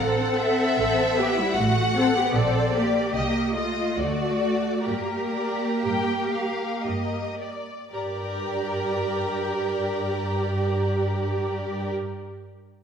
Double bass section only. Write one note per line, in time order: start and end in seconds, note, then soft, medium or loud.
0.00 0.66 A1 medium
0.78 1.45 A1 medium
1.57 2.23 A1 medium
2.35 3.03 A#1 medium
3.15 3.85 C2 soft
3.98 4.74 D2 soft
4.88 5.71 G2 soft
5.85 6.71 G2 soft
6.85 7.78 G2 soft
7.93 11.92 G2 soft